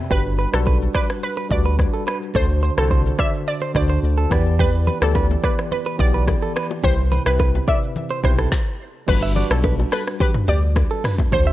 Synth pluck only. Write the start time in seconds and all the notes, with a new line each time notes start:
0.11 B4
0.54 A4
0.95 B4
1.23 B4
1.51 D5
2.36 C5
2.78 A4
3.19 E5
3.48 D5
3.76 D5
4.60 B4
5.03 A4
5.44 B4
5.72 B4
6.00 D5
6.84 C5
7.27 B4
7.68 E5
8.24 C5
9.08 B4
9.51 A4
9.93 B4
10.21 B4
10.49 D5
11.33 C5